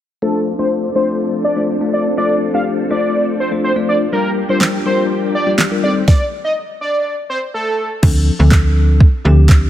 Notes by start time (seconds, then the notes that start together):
0.22 F3 A3 C4 D4 F4 A4 C5
0.59 A3 D4 F4 C5
0.95 A3 D4 F4 C5
1.44 D5
1.56 A3 D4 F4 C5
1.81 A3 D4 F4 D5
1.93 D5
2.17 A3 D4 F4 A4 D5
2.54 A3 D4 F4 G4 F5
2.90 A3 D4 F4 C5 D5
3.40 C5
3.52 A3 D4 F4 C5
3.64 C5
3.76 A3 D4 F4 D5
3.89 D5
4.12 G3 A#3 D4 F4 G4 A#4
4.49 G3 D4 F4 A#4 C5
4.61 snare, clap
4.85 G3 D4 F4 A#4 C5
5.35 D5
5.47 G3 D4 F4 G4
5.58 snare, clap
5.71 G3 D4 F4 A#4
5.83 D#3 G3 A3 C4 D#4 G4 A4 D5
6.08 D5, kick, snare
6.44 D#5
6.81 D5
7.30 C5
7.54 A4
8.03 D2 F3 C4 D4 A4, kick, crash
8.39 D2 F3 C4 D4 A4
8.51 kick, snare, clap
9.00 kick
9.25 D2 F3 C4 D4 G4
9.49 kick, snare, clap